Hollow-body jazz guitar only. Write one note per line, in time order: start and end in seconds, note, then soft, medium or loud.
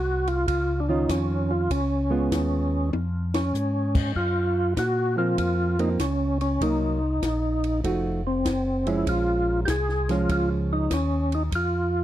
0.88 1.66 D#3 medium
0.88 1.67 C#4 medium
0.88 1.67 F4 medium
2.10 2.89 G#3 medium
2.10 2.89 B3 medium
2.10 2.89 F4 medium
5.17 5.74 F3 medium
5.17 5.75 A#3 medium
5.17 5.75 C4 medium
5.79 5.97 F3 medium
5.79 5.98 A#3 medium
5.79 5.98 C4 medium
6.61 6.98 F#3 soft
6.61 6.98 A#3 medium
6.61 6.98 D#4 medium
7.84 8.21 F3 soft
7.84 8.21 A3 medium
7.84 8.21 D#4 medium
7.84 8.21 F#4 medium
8.86 9.64 F3 medium
8.86 9.64 G#3 medium
8.86 9.64 C#4 medium
10.09 10.87 F3 medium
10.09 10.87 G#3 medium
10.09 10.88 C#4 medium